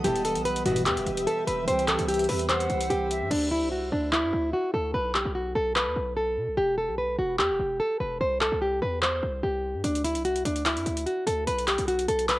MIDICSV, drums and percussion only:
0, 0, Header, 1, 2, 480
1, 0, Start_track
1, 0, Tempo, 408163
1, 52, Time_signature, 4, 2, 24, 8
1, 14572, End_track
2, 0, Start_track
2, 0, Title_t, "Drums"
2, 51, Note_on_c, 9, 42, 81
2, 169, Note_off_c, 9, 42, 0
2, 183, Note_on_c, 9, 42, 57
2, 292, Note_off_c, 9, 42, 0
2, 292, Note_on_c, 9, 42, 87
2, 409, Note_off_c, 9, 42, 0
2, 417, Note_on_c, 9, 42, 67
2, 532, Note_off_c, 9, 42, 0
2, 532, Note_on_c, 9, 42, 68
2, 649, Note_off_c, 9, 42, 0
2, 659, Note_on_c, 9, 42, 67
2, 771, Note_off_c, 9, 42, 0
2, 771, Note_on_c, 9, 42, 82
2, 889, Note_off_c, 9, 42, 0
2, 894, Note_on_c, 9, 42, 68
2, 1011, Note_off_c, 9, 42, 0
2, 1011, Note_on_c, 9, 42, 90
2, 1012, Note_on_c, 9, 39, 126
2, 1129, Note_off_c, 9, 42, 0
2, 1130, Note_off_c, 9, 39, 0
2, 1141, Note_on_c, 9, 42, 65
2, 1252, Note_off_c, 9, 42, 0
2, 1252, Note_on_c, 9, 42, 49
2, 1370, Note_off_c, 9, 42, 0
2, 1379, Note_on_c, 9, 42, 84
2, 1494, Note_off_c, 9, 42, 0
2, 1494, Note_on_c, 9, 42, 60
2, 1612, Note_off_c, 9, 42, 0
2, 1734, Note_on_c, 9, 42, 81
2, 1852, Note_off_c, 9, 42, 0
2, 1972, Note_on_c, 9, 42, 81
2, 2090, Note_off_c, 9, 42, 0
2, 2104, Note_on_c, 9, 42, 58
2, 2212, Note_off_c, 9, 42, 0
2, 2212, Note_on_c, 9, 39, 100
2, 2212, Note_on_c, 9, 42, 85
2, 2329, Note_off_c, 9, 39, 0
2, 2330, Note_off_c, 9, 42, 0
2, 2337, Note_on_c, 9, 42, 64
2, 2452, Note_off_c, 9, 42, 0
2, 2452, Note_on_c, 9, 42, 77
2, 2516, Note_off_c, 9, 42, 0
2, 2516, Note_on_c, 9, 42, 66
2, 2579, Note_off_c, 9, 42, 0
2, 2579, Note_on_c, 9, 42, 58
2, 2635, Note_off_c, 9, 42, 0
2, 2635, Note_on_c, 9, 42, 47
2, 2692, Note_on_c, 9, 46, 81
2, 2753, Note_off_c, 9, 42, 0
2, 2810, Note_off_c, 9, 46, 0
2, 2815, Note_on_c, 9, 42, 66
2, 2932, Note_off_c, 9, 42, 0
2, 2932, Note_on_c, 9, 39, 126
2, 2932, Note_on_c, 9, 42, 88
2, 3049, Note_off_c, 9, 42, 0
2, 3050, Note_off_c, 9, 39, 0
2, 3061, Note_on_c, 9, 42, 63
2, 3171, Note_off_c, 9, 42, 0
2, 3171, Note_on_c, 9, 42, 48
2, 3289, Note_off_c, 9, 42, 0
2, 3299, Note_on_c, 9, 42, 82
2, 3414, Note_off_c, 9, 42, 0
2, 3414, Note_on_c, 9, 42, 62
2, 3531, Note_off_c, 9, 42, 0
2, 3654, Note_on_c, 9, 42, 80
2, 3772, Note_off_c, 9, 42, 0
2, 3892, Note_on_c, 9, 49, 94
2, 4010, Note_off_c, 9, 49, 0
2, 4852, Note_on_c, 9, 39, 126
2, 4970, Note_off_c, 9, 39, 0
2, 6051, Note_on_c, 9, 39, 100
2, 6169, Note_off_c, 9, 39, 0
2, 6772, Note_on_c, 9, 39, 126
2, 6889, Note_off_c, 9, 39, 0
2, 8692, Note_on_c, 9, 39, 125
2, 8810, Note_off_c, 9, 39, 0
2, 9891, Note_on_c, 9, 39, 101
2, 10009, Note_off_c, 9, 39, 0
2, 10612, Note_on_c, 9, 39, 118
2, 10730, Note_off_c, 9, 39, 0
2, 11573, Note_on_c, 9, 42, 79
2, 11690, Note_off_c, 9, 42, 0
2, 11704, Note_on_c, 9, 42, 58
2, 11813, Note_off_c, 9, 42, 0
2, 11813, Note_on_c, 9, 42, 88
2, 11930, Note_off_c, 9, 42, 0
2, 11937, Note_on_c, 9, 42, 62
2, 12053, Note_off_c, 9, 42, 0
2, 12053, Note_on_c, 9, 42, 63
2, 12171, Note_off_c, 9, 42, 0
2, 12180, Note_on_c, 9, 42, 64
2, 12293, Note_off_c, 9, 42, 0
2, 12293, Note_on_c, 9, 42, 78
2, 12411, Note_off_c, 9, 42, 0
2, 12415, Note_on_c, 9, 42, 63
2, 12532, Note_off_c, 9, 42, 0
2, 12532, Note_on_c, 9, 39, 127
2, 12532, Note_on_c, 9, 42, 90
2, 12649, Note_off_c, 9, 42, 0
2, 12650, Note_off_c, 9, 39, 0
2, 12662, Note_on_c, 9, 42, 62
2, 12773, Note_off_c, 9, 42, 0
2, 12773, Note_on_c, 9, 42, 49
2, 12890, Note_off_c, 9, 42, 0
2, 12900, Note_on_c, 9, 42, 84
2, 13014, Note_off_c, 9, 42, 0
2, 13014, Note_on_c, 9, 42, 59
2, 13131, Note_off_c, 9, 42, 0
2, 13254, Note_on_c, 9, 42, 80
2, 13372, Note_off_c, 9, 42, 0
2, 13492, Note_on_c, 9, 42, 77
2, 13610, Note_off_c, 9, 42, 0
2, 13624, Note_on_c, 9, 42, 57
2, 13732, Note_on_c, 9, 39, 96
2, 13733, Note_off_c, 9, 42, 0
2, 13733, Note_on_c, 9, 42, 85
2, 13849, Note_off_c, 9, 39, 0
2, 13850, Note_off_c, 9, 42, 0
2, 13857, Note_on_c, 9, 42, 61
2, 13972, Note_off_c, 9, 42, 0
2, 13972, Note_on_c, 9, 42, 62
2, 14089, Note_off_c, 9, 42, 0
2, 14099, Note_on_c, 9, 42, 65
2, 14212, Note_off_c, 9, 42, 0
2, 14212, Note_on_c, 9, 42, 81
2, 14329, Note_off_c, 9, 42, 0
2, 14334, Note_on_c, 9, 42, 64
2, 14452, Note_off_c, 9, 42, 0
2, 14452, Note_on_c, 9, 39, 124
2, 14452, Note_on_c, 9, 42, 86
2, 14569, Note_off_c, 9, 42, 0
2, 14570, Note_off_c, 9, 39, 0
2, 14572, End_track
0, 0, End_of_file